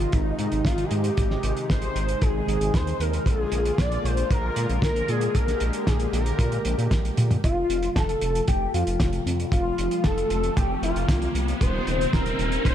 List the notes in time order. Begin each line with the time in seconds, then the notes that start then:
Already playing: C3 D#3 G#3 D#4 F4
0.00 closed hi-hat
0.12 G#1 D#4, kick, closed hi-hat
0.39 G#2, closed hi-hat
0.52 G#1, closed hi-hat
0.65 G#1 F4, kick, snare, closed hi-hat
0.78 closed hi-hat
0.84 G#4
0.91 G#2 G4, closed hi-hat
1.04 closed hi-hat
1.17 G#1, kick, closed hi-hat
1.31 snare
1.43 G#1, closed hi-hat
1.57 closed hi-hat
1.70 G#1 C5, kick, snare, closed hi-hat
1.82 closed hi-hat
1.96 G#1, closed hi-hat
2.08 closed hi-hat
2.22 G#1 G#4, kick, closed hi-hat
2.48 G#1, closed hi-hat
2.61 G#1, closed hi-hat
2.74 D#2 C5, kick, snare, closed hi-hat
2.87 closed hi-hat
3.00 D#2 A#4, closed hi-hat
3.13 closed hi-hat
3.26 A#1 D3 G#3 A#3 F4 G#4, kick, closed hi-hat
3.52 A#1, closed hi-hat
3.65 closed hi-hat
3.78 A#1 D5, kick, snare, closed hi-hat
3.92 closed hi-hat
4.04 A#1 C5, closed hi-hat
4.17 closed hi-hat
4.31 A#1 A#4, kick, closed hi-hat
4.56 A#2, closed hi-hat
4.70 A#1, closed hi-hat
4.82 A#1 A#4, kick, snare, closed hi-hat
4.96 closed hi-hat
5.08 A#2 G#4, closed hi-hat
5.21 closed hi-hat
5.35 A#1 G4 A#4, kick, closed hi-hat
5.48 snare, closed hi-hat
5.60 A#1, closed hi-hat
5.73 closed hi-hat
5.87 A#1 G#4, kick, snare, closed hi-hat
6.00 closed hi-hat
6.13 A#1 A#4, closed hi-hat
6.26 closed hi-hat
6.39 A#2, kick, closed hi-hat
6.52 closed hi-hat
6.65 A#1, closed hi-hat
6.78 A#2, closed hi-hat
6.91 A#1, kick, snare, closed hi-hat
7.05 closed hi-hat
7.17 A#2, closed hi-hat, high tom
7.31 closed hi-hat, mid tom
7.44 F1 C3 F3 A3 F4 F5, kick, closed hi-hat, riser
7.70 F1, closed hi-hat
7.83 closed hi-hat
7.96 F1 A4 A5, kick, snare, closed hi-hat
8.09 closed hi-hat
8.21 F1, closed hi-hat
8.35 closed hi-hat
8.48 F1 G4 G5, kick, closed hi-hat
8.74 F2 F4 F5, closed hi-hat
8.87 F1, closed hi-hat
9.00 F1, kick, snare, closed hi-hat
9.13 closed hi-hat
9.26 F2, closed hi-hat
9.40 closed hi-hat
9.52 F1 F4 F5, kick, closed hi-hat
9.78 F1, closed hi-hat
9.91 closed hi-hat
10.04 F1 A4 A5, kick, snare, closed hi-hat
10.18 closed hi-hat
10.30 F1, closed hi-hat
10.43 closed hi-hat
10.57 F1 G4 G5, kick, closed hi-hat
10.83 F1 F4 F5, closed hi-hat
10.96 F1, closed hi-hat
11.09 C2, kick, snare, closed hi-hat
11.22 closed hi-hat
11.35 C2, closed hi-hat
11.48 closed hi-hat
11.61 D#1 G3 A#3 D#4 C5 C6, kick, closed hi-hat
11.87 D#1, closed hi-hat
12.01 closed hi-hat
12.13 D#1 A#4 A#5, kick, snare, closed hi-hat
12.26 closed hi-hat
12.39 D#1, closed hi-hat
12.52 closed hi-hat
12.65 D#1 C5 C6, kick, closed hi-hat